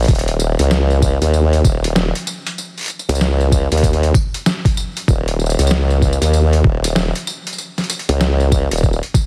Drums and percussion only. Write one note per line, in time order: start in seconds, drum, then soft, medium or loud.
0.03 closed hi-hat soft
0.03 tambourine soft
0.08 kick loud
0.08 closed hi-hat soft
0.08 tambourine soft
0.15 closed hi-hat medium
0.19 closed hi-hat medium
0.28 closed hi-hat medium
0.28 tambourine soft
0.40 tambourine medium
0.59 closed hi-hat medium
0.59 tambourine soft
0.71 snare loud
0.71 tambourine soft
0.90 tambourine soft
1.02 kick medium
1.02 tambourine medium
1.22 closed hi-hat medium
1.22 tambourine soft
1.34 tambourine soft
1.53 closed hi-hat soft
1.53 tambourine soft
1.64 kick loud
1.64 tambourine medium
1.84 closed hi-hat medium
1.84 tambourine soft
1.96 snare loud
1.96 tambourine soft
2.15 closed hi-hat medium
2.15 tambourine soft
2.27 tambourine medium
2.47 closed hi-hat medium
2.47 tambourine soft
2.58 tambourine soft
2.78 closed hi-hat soft
2.78 tambourine soft
2.79 closed hi-hat soft
2.81 closed hi-hat soft
2.83 closed hi-hat soft
2.84 closed hi-hat soft
2.86 closed hi-hat soft
2.88 closed hi-hat soft
2.88 tambourine soft
2.99 tambourine soft
3.09 closed hi-hat medium
3.09 tambourine medium
3.15 tambourine medium
3.21 snare loud
3.21 tambourine soft
3.40 tambourine soft
3.52 kick medium
3.52 tambourine medium
3.72 closed hi-hat medium
3.72 tambourine soft
3.77 closed hi-hat medium
3.83 kick medium
3.83 closed hi-hat soft
3.83 tambourine soft
3.93 closed hi-hat soft
4.03 closed hi-hat soft
4.03 tambourine soft
4.14 kick loud
4.14 tambourine medium
4.34 closed hi-hat medium
4.34 tambourine soft
4.46 snare loud
4.46 tambourine soft
4.65 kick loud
4.65 closed hi-hat soft
4.65 tambourine soft
4.69 tambourine soft
4.71 tambourine soft
4.74 tambourine soft
4.77 tambourine medium
4.82 tambourine soft
4.87 tambourine soft
4.92 tambourine soft
4.97 closed hi-hat medium
4.97 tambourine soft
5.08 kick loud
5.08 tambourine soft
5.28 closed hi-hat medium
5.28 tambourine soft
5.40 tambourine soft
5.46 tambourine soft
5.50 tambourine soft
5.59 closed hi-hat medium
5.59 tambourine medium
5.60 tambourine medium
5.67 snare loud
5.67 tambourine medium
5.71 tambourine soft
5.90 tambourine soft
6.02 kick medium
6.02 tambourine soft
6.13 tambourine soft
6.22 closed hi-hat medium
6.22 tambourine soft
6.22 tambourine medium
6.33 tambourine soft
6.53 closed hi-hat soft
6.53 tambourine soft
6.64 kick medium
6.84 closed hi-hat medium
6.84 tambourine medium
6.96 snare loud
6.96 tambourine soft
7.15 closed hi-hat medium
7.15 tambourine soft
7.27 tambourine medium
7.47 closed hi-hat medium
7.53 tambourine soft
7.58 tambourine soft
7.78 snare soft
7.78 closed hi-hat soft
7.78 tambourine soft
7.84 closed hi-hat soft
7.90 closed hi-hat soft
7.90 tambourine medium
7.99 closed hi-hat soft
8.09 closed hi-hat medium
8.09 tambourine soft
8.21 snare loud
8.21 tambourine soft
8.40 tambourine soft
8.52 kick medium
8.52 tambourine medium
8.71 closed hi-hat medium
8.78 tambourine soft
8.83 kick medium
8.83 tambourine soft
8.93 tambourine soft
9.03 closed hi-hat soft
9.14 kick loud
9.14 tambourine medium